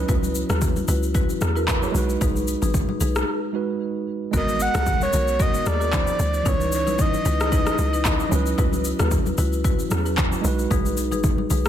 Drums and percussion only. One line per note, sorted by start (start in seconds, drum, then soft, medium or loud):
0.09 kick loud
0.09 shaker medium
0.23 high conga soft
0.23 shaker medium
0.35 shaker loud
0.50 cross-stick medium
0.50 high conga medium
0.50 shaker medium
0.62 kick medium
0.62 low conga medium
0.62 shaker medium
0.76 high conga medium
0.76 shaker soft
0.88 low conga medium
0.88 shaker loud
1.03 shaker medium
1.15 kick loud
1.15 shaker medium
1.30 shaker medium
1.41 cross-stick medium
1.41 high conga medium
1.41 shaker medium
1.57 shaker soft
1.68 kick medium
1.68 clap loud
1.68 low conga medium
1.68 shaker medium
1.83 shaker medium
1.94 high conga medium
1.94 low conga medium
1.94 shaker loud
2.09 shaker soft
2.21 kick loud
2.21 shaker medium
2.35 high conga soft
2.35 shaker medium
2.48 shaker loud
2.62 high conga medium
2.62 shaker medium
2.74 kick loud
2.74 low conga medium
2.74 shaker medium
2.89 high conga medium
3.01 low conga medium
3.01 shaker loud
3.15 cross-stick medium
3.15 shaker medium
4.34 kick loud
4.34 shaker medium
4.48 high conga medium
4.48 shaker medium
4.60 shaker loud
4.75 cross-stick medium
4.75 high conga medium
4.75 shaker medium
4.86 kick loud
4.86 low conga medium
4.86 shaker medium
5.01 high conga medium
5.01 shaker medium
5.13 low conga medium
5.13 shaker loud
5.28 shaker soft
5.40 kick loud
5.40 shaker medium
5.54 shaker medium
5.66 cross-stick medium
5.66 high conga medium
5.66 shaker medium
5.81 shaker soft
5.93 kick loud
5.93 clap loud
5.93 low conga medium
5.93 shaker medium
6.07 shaker medium
6.19 high conga medium
6.19 low conga medium
6.19 shaker loud
6.34 shaker medium
6.46 kick loud
6.46 shaker medium
6.60 high conga soft
6.60 shaker medium
6.72 shaker loud
6.87 high conga medium
6.87 shaker medium
6.99 kick loud
6.99 low conga medium
6.99 shaker medium
7.14 high conga medium
7.14 shaker medium
7.25 low conga medium
7.25 shaker loud
7.40 cross-stick loud
7.40 shaker medium
7.52 kick loud
7.52 shaker medium
7.67 cross-stick medium
7.67 shaker medium
7.78 high conga medium
7.78 shaker medium
7.94 shaker soft
8.05 kick medium
8.05 clap loud
8.05 low conga medium
8.05 shaker medium
8.20 shaker medium
8.32 high conga medium
8.32 low conga medium
8.32 shaker loud
8.46 shaker medium
8.58 kick loud
8.58 shaker medium
8.73 high conga soft
8.73 shaker medium
8.85 shaker loud
8.99 cross-stick medium
8.99 high conga medium
8.99 shaker medium
9.11 kick loud
9.11 low conga medium
9.11 shaker medium
9.26 high conga medium
9.26 shaker medium
9.38 low conga medium
9.38 shaker loud
9.53 shaker medium
9.64 kick loud
9.64 shaker medium
9.79 shaker medium
9.91 cross-stick medium
9.91 high conga medium
9.91 shaker medium
10.06 shaker soft
10.17 kick medium
10.17 clap loud
10.17 low conga medium
10.17 shaker medium
10.32 shaker medium
10.44 high conga medium
10.44 low conga medium
10.44 shaker loud
10.59 shaker soft
10.71 kick loud
10.71 shaker medium
10.85 high conga soft
10.85 shaker medium
10.97 shaker loud
11.12 high conga medium
11.12 shaker medium
11.24 kick medium
11.24 low conga medium
11.24 shaker medium
11.38 high conga medium
11.50 low conga medium
11.50 shaker loud
11.65 cross-stick loud
11.65 shaker medium